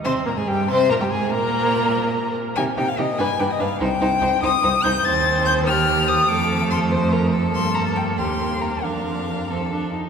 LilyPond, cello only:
\new Staff \with { instrumentName = "Cello" } { \clef bass \time 6/8 \key c \minor \tempo 4. = 96 c8 bes,16 aes,16 g,8 c8 bes,16 g,16 aes,8 | bes,2~ bes,8 r8 | c8 c8 c8 g,8 g,8 g,8 | c,8 c,8 c,8 c,8 c,8 c,8 |
\key f \mixolydian ees,2. | f,2. | g,4. ees,4. | f,4. f,4 r8 | }